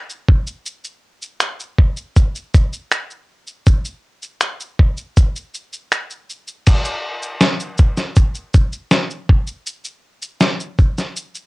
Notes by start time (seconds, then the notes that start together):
0.10 shaker
0.28 kick
0.47 shaker
0.66 shaker
0.84 shaker
1.22 shaker
1.40 finger snap, shaker
1.60 shaker
1.79 kick
1.97 shaker
2.16 kick, shaker
2.35 shaker
2.54 kick, shaker
2.73 shaker
2.92 finger snap, shaker
3.11 shaker
3.47 shaker
3.67 kick, shaker
3.85 shaker
4.22 shaker
4.41 finger snap, shaker
4.60 shaker
4.79 kick
4.97 shaker
5.17 kick, shaker
5.36 shaker
5.54 shaker
5.73 shaker
5.92 finger snap, shaker
6.10 shaker
6.29 shaker
6.47 shaker
6.66 kick, crash, shaker
6.85 shaker
7.22 shaker
7.41 snare, shaker
7.60 shaker
7.78 kick, shaker
7.97 snare, shaker
8.16 kick, shaker
8.35 shaker
8.54 kick, shaker
8.73 shaker
8.91 snare, shaker
9.10 shaker
9.29 kick
9.47 shaker
9.66 shaker
9.84 shaker
10.22 shaker
10.41 snare, shaker
10.60 shaker
10.78 kick, shaker
10.98 snare, shaker
11.16 shaker
11.35 shaker